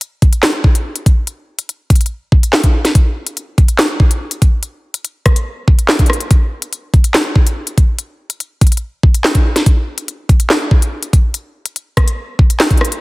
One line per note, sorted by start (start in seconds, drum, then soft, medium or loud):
0.01 closed hi-hat medium
0.22 kick medium
0.22 closed hi-hat soft
0.33 closed hi-hat medium
0.43 snare loud
0.43 clap loud
0.64 kick loud
0.75 closed hi-hat medium
0.96 closed hi-hat medium
1.06 kick medium
1.06 closed hi-hat medium
1.27 closed hi-hat medium
1.59 closed hi-hat medium
1.69 closed hi-hat medium
1.90 kick loud
1.90 closed hi-hat medium
1.96 closed hi-hat medium
2.01 closed hi-hat medium
2.06 closed hi-hat medium
2.32 kick loud
2.43 closed hi-hat medium
2.53 snare loud
2.53 clap medium
2.64 kick loud
2.64 closed hi-hat medium
2.85 snare medium
2.85 closed hi-hat medium
2.95 kick loud
2.95 closed hi-hat medium
3.27 closed hi-hat medium
3.37 closed hi-hat medium
3.58 kick loud
3.58 closed hi-hat soft
3.68 closed hi-hat medium
3.78 snare loud
3.78 clap loud
4.00 kick loud
4.11 closed hi-hat medium
4.31 closed hi-hat medium
4.42 kick medium
4.42 closed hi-hat medium
4.63 closed hi-hat medium
4.94 closed hi-hat medium
5.05 closed hi-hat medium
5.26 kick loud
5.26 cross-stick medium
5.26 closed hi-hat soft
5.36 closed hi-hat medium
5.68 kick loud
5.79 closed hi-hat medium
5.88 snare loud
5.88 clap medium
5.99 kick loud
5.99 closed hi-hat soft
6.06 cross-stick loud
6.06 closed hi-hat medium
6.13 closed hi-hat medium
6.21 closed hi-hat medium
6.31 kick loud
6.31 closed hi-hat medium
6.62 closed hi-hat medium
6.73 closed hi-hat medium
6.94 kick loud
6.94 closed hi-hat soft
7.04 closed hi-hat medium
7.14 snare loud
7.14 clap loud
7.36 kick loud
7.47 closed hi-hat medium
7.67 closed hi-hat medium
7.78 kick medium
7.78 closed hi-hat medium
7.99 closed hi-hat medium
8.30 closed hi-hat medium
8.40 closed hi-hat medium
8.61 kick medium
8.61 closed hi-hat medium
8.67 closed hi-hat medium
8.72 closed hi-hat medium
8.77 closed hi-hat medium
9.03 kick loud
9.14 closed hi-hat medium
9.24 snare loud
9.24 clap medium
9.35 kick loud
9.35 closed hi-hat medium
9.56 snare medium
9.56 closed hi-hat medium
9.66 kick loud
9.66 closed hi-hat medium
9.98 closed hi-hat medium
10.08 closed hi-hat medium
10.29 kick medium
10.29 closed hi-hat soft
10.40 closed hi-hat medium
10.50 snare loud
10.50 clap medium
10.71 kick loud
10.82 closed hi-hat medium
11.03 closed hi-hat medium
11.13 kick medium
11.13 closed hi-hat medium
11.34 closed hi-hat medium
11.66 closed hi-hat medium
11.76 closed hi-hat medium
11.97 kick medium
11.97 cross-stick loud
11.97 closed hi-hat soft
12.08 closed hi-hat medium
12.39 kick loud
12.50 closed hi-hat medium
12.60 snare loud
12.60 clap medium
12.71 kick loud
12.71 closed hi-hat soft
12.78 cross-stick loud
12.78 closed hi-hat medium
12.85 closed hi-hat medium
12.92 closed hi-hat medium